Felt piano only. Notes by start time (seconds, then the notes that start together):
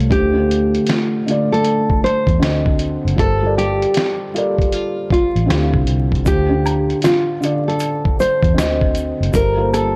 Already playing: A3 F4 G4 C5 C#5
0.10 D3 A3 F4
0.15 C5
0.33 D3 A3 F4
0.38 C5
1.27 D3 A3 F4
1.31 D5
2.40 D3 C4 F#4
2.44 D#5
3.15 G3 F4 A4 A#4
3.19 C5
3.42 G3 F4 A4 A#4
3.46 D5
4.34 G3 F4 A4 A#4
4.38 D5
5.46 D3 C4 E4 F4
5.51 G4
6.25 D3 D4 F4
6.29 C5
6.49 D3 D4 F4
6.54 G4
7.41 D3 D4 F4
7.45 D5
8.54 D3 C4 F#4
8.59 D#5
9.32 G3 F4 A4 A#4
9.37 C5
9.56 G3 A#3 F4 A4
9.61 C5